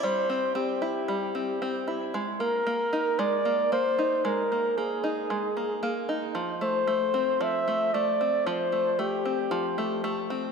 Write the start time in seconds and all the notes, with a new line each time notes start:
Already playing: C4 E4
0.03 G3 C5
0.29 C4
0.55 C4 G4
0.82 E4
1.08 G3
1.35 C4
1.62 C4
1.88 E4
2.14 G#3
2.40 A#3 A#4
2.67 A#3
2.93 D#4
3.19 G#3 D5
3.45 A#3
3.72 A#3 C5
3.99 D#4
4.25 G#3 A#4
4.52 A#3
4.77 A#3 G#4
5.04 D#4
5.30 G#3
5.57 A#3
5.83 A#3
6.09 D#4
6.35 F3
6.61 A3 C5
6.87 A3
7.14 C4
7.41 F3 E5
7.68 A3
7.94 A3 D5
8.21 C4
8.47 F3 C5
8.72 A3
8.99 A3 G4
9.25 C4
9.51 F3
9.78 A3
10.04 A3
10.30 C4